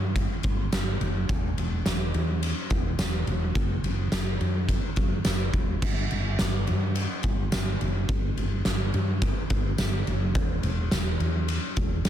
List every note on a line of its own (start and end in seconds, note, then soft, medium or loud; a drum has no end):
0.00 0.25 G2 loud
0.16 kick loud
0.16 ride medium
0.43 0.69 G1 loud
0.43 kick loud
0.43 ride soft
0.72 0.98 G1 loud
0.72 snare loud
0.72 ride medium
0.72 tambourine medium
1.01 1.26 F#1 loud
1.01 ride soft
1.29 1.54 E1 loud
1.29 kick loud
1.29 ride medium
1.57 1.82 E1 loud
1.57 ride soft
1.86 2.11 E1 loud
1.86 snare loud
1.86 ride medium
1.86 tambourine medium
2.14 2.52 E2 loud
2.14 ride soft
2.43 ride medium
2.70 2.96 E1 loud
2.70 kick medium
2.70 ride soft
2.98 3.24 E1 loud
2.98 snare loud
2.98 ride medium
2.98 tambourine medium
3.27 3.52 E1 loud
3.27 ride soft
3.55 3.80 F#1 loud
3.55 kick loud
3.55 ride medium
3.83 4.09 F#1 medium
3.83 ride soft
4.12 4.37 F#1 loud
4.12 snare loud
4.12 ride medium
4.12 tambourine medium
4.40 4.78 F#2 loud
4.40 ride soft
4.69 kick medium
4.69 ride medium
4.96 5.22 F#1 loud
4.96 kick medium
4.96 ride soft
5.25 5.51 F#1 medium
5.25 snare loud
5.25 ride medium
5.25 tambourine medium
5.53 5.79 E1 loud
5.53 kick loud
5.53 ride soft
5.82 6.07 G1 loud
5.82 kick loud
5.82 crash loud
6.11 6.36 G1 loud
6.11 ride soft
6.39 6.70 G1 loud
6.39 snare loud
6.39 ride medium
6.39 tambourine medium
6.67 7.05 G2 medium
6.67 ride soft
6.95 ride medium
7.23 7.49 G1 loud
7.23 kick loud
7.23 ride soft
7.52 7.78 G1 loud
7.52 snare loud
7.52 ride medium
7.52 tambourine medium
7.81 8.06 F#1 medium
7.81 ride soft
8.09 8.34 G1 loud
8.09 kick loud
8.09 ride medium
8.37 8.62 G1 medium
8.37 ride medium
8.65 8.90 G1 loud
8.65 snare loud
8.65 ride medium
8.65 tambourine medium
8.94 9.31 G2 loud
8.94 ride soft
9.22 kick loud
9.22 ride medium
9.50 9.75 G1 loud
9.50 kick loud
9.50 ride medium
9.78 10.04 G1 loud
9.78 snare loud
9.78 ride medium
9.78 tambourine medium
10.07 10.35 F#1 loud
10.07 ride soft
10.35 10.60 E1 loud
10.35 kick loud
10.35 ride medium
10.63 10.88 E1 loud
10.63 ride soft
10.91 11.17 E1 loud
10.91 snare loud
10.91 ride medium
10.91 tambourine medium
11.20 11.57 E2 loud
11.20 ride soft
11.48 ride medium
11.76 12.02 E1 loud
11.76 kick loud
11.76 ride soft
12.05 12.09 E1 loud
12.05 snare loud
12.05 ride medium
12.05 tambourine medium